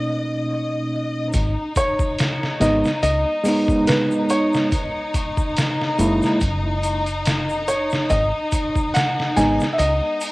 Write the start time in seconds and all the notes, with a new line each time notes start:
Already playing: B2 A#3 C#4 D#4 D#5
1.33 G#1 D#4, kick, closed hi-hat, shaker
1.76 C#5, kick, closed hi-hat, shaker
1.99 kick, shaker
2.18 snare, closed hi-hat, shaker
2.43 snare
2.60 G#1 G#3 B3 D#4 D#5, snare, closed hi-hat, shaker
2.85 snare, shaker
3.03 C#2 D#5, closed hi-hat, shaker
3.44 G#3 B3, open hi-hat, shaker
3.48 D#4
3.68 kick, shaker
3.87 B4, snare, closed hi-hat, shaker
4.11 shaker
4.30 C#5, closed hi-hat, shaker
4.53 snare, shaker
4.72 kick, closed hi-hat, shaker
5.14 kick, closed hi-hat, shaker
5.37 kick, shaker
5.57 snare, closed hi-hat, shaker
5.82 snare
5.99 F#1 G#3 A#3 E4, closed hi-hat, shaker
6.22 snare, shaker
6.41 F#1, kick, closed hi-hat, shaker
6.83 closed hi-hat, shaker
7.06 closed hi-hat, shaker
7.25 snare, closed hi-hat, shaker
7.49 shaker
7.68 C#5, closed hi-hat, shaker
7.90 snare, shaker
8.10 G#1 D#5, kick, closed hi-hat, shaker
8.52 kick, closed hi-hat, shaker
8.76 kick, shaker
8.94 F#5, snare, closed hi-hat, shaker
9.20 snare
9.36 G#1 G#3 B3 D#4 G#5, snare, closed hi-hat, shaker
9.60 snare, shaker
9.73 E5
9.78 C#2 D#5, closed hi-hat, shaker
10.21 open hi-hat, shaker